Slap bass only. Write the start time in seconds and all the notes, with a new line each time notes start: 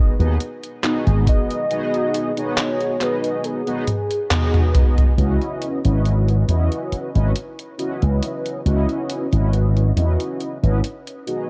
0.20 D#2
1.07 G#1
5.18 C#2
5.85 G#1
6.48 E2
6.92 muted slap bass stroke
7.15 G#1
8.02 C#2
8.66 C#2
9.32 G#1
9.97 E2
10.63 G#1